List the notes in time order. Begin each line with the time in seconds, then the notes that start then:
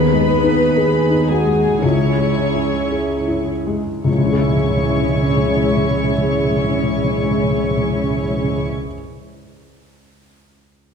Already playing: D#2 B3 D#4 G#4 B4 B5
0.13 G#3
0.44 D#4
0.76 G#4
1.10 D#4
1.28 G#3 F#4 G#4 G#5
1.46 G#3
1.81 C#2 C#3 C#4 E4 C#5 C#6
2.17 G#3
2.55 E4
2.91 G#4
3.28 E4
3.67 G#3
4.04 C#2 C#3 C#4 E4 G#4 C#5 C#6
4.09 C#3 G#3
4.18 C#3 G#3
4.25 C#3 E4
4.31 C#3 G#4
4.37 C#3 E5
4.44 C#3
4.50 C#3
4.56 C#3
4.63 C#3
4.70 C#3
4.76 C#3
4.83 C#3
4.89 C#3
4.96 C#3
5.03 C#3
5.09 C#3
5.16 C#3
5.22 C#3
5.29 C#3
5.37 C#3
5.43 C#3
5.50 C#3
5.57 C#3
5.63 C#3
5.70 C#3
5.77 C#3
5.84 C#3
5.91 C#3
5.97 C#3
6.04 C#3
6.11 C#3
6.18 C#3
6.25 C#3
6.31 C#3
6.38 C#3
6.44 C#3
6.50 C#3
6.56 C#3
6.64 C#3
6.70 C#3
6.76 C#3
6.83 C#3
6.90 C#3
6.96 C#3
7.04 C#3
7.11 C#3
7.18 C#3
7.24 C#3
7.31 C#3
7.37 C#3
7.44 C#3
7.50 C#3
7.57 C#3
7.63 C#3
7.70 C#3
7.77 C#3
7.84 C#3
7.90 C#3
7.97 C#3
8.03 C#3
8.10 C#3
8.17 C#3
8.23 C#3
8.30 C#3
8.37 C#3
8.44 C#3
8.51 C#3
8.58 C#3